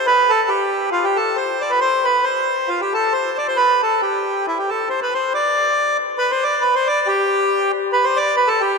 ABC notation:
X:1
M:2/4
L:1/16
Q:"Swing" 1/4=137
K:Ddor
V:1 name="Accordion"
B2 A2 G4 | F G A2 c2 d B | c2 B2 c4 | F G A2 c2 d c |
B2 A2 G4 | E G A2 c B c2 | d6 z2 | B c d2 B c d2 |
G6 z2 | B c d2 B A G2 |]